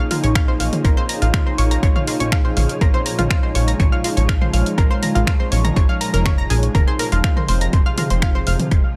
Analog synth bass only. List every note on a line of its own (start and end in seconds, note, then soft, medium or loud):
0.23 0.55 A#1 medium
0.60 0.70 A#1 medium
0.85 0.94 A#1 loud
1.22 1.31 A#1 medium
1.58 1.77 A#1 medium
1.83 1.93 A#1 medium
2.20 2.52 A#1 medium
2.57 2.66 A#1 medium
2.81 2.91 A#1 loud
3.19 3.28 A#1 medium
3.55 3.74 A#1 medium
3.80 3.89 A#1 medium
4.17 4.49 A#1 medium
4.53 4.63 A#1 loud
4.78 4.88 A#1 loud
5.15 5.24 A#1 medium
5.52 5.71 A#1 medium
5.76 5.86 G#1 medium
6.14 6.46 F1 medium
6.50 6.69 A#1 loud
6.75 6.85 F1 loud
7.12 7.21 F1 medium
7.49 7.68 F1 medium
7.73 7.83 F1 medium
8.11 8.42 F1 medium
8.47 8.57 F1 medium
8.72 8.81 F1 loud